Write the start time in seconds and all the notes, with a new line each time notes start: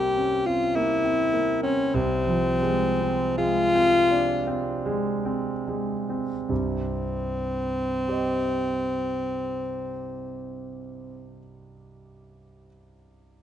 Already playing: C2 G3 A#3 C4 G4
0.17 C#4
0.46 C4 F4
0.76 A#3 E4
1.04 C4
1.33 A#3
1.63 C4 C#4
1.94 C2 C4
2.27 F3
2.62 G#3
3.01 C4
3.38 G#3 F4
3.74 C4
4.11 D4
4.47 C4
4.86 G#3
5.25 C4
5.68 G#3
6.10 C4
6.48 C2 G2 C4
8.08 G4 C5 D#5